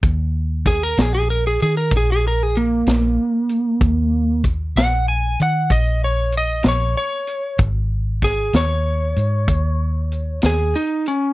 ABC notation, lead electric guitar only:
X:1
M:12/8
L:1/16
Q:3/8=63
K:Ebm
V:1 name="Lead electric guitar"
z4 A B A A B A A B A A B A B,8- | B,4 z2 g2 a2 g2 e2 d2 e2 d2 d4 | z4 A2 d12 A2 E2 D2 |]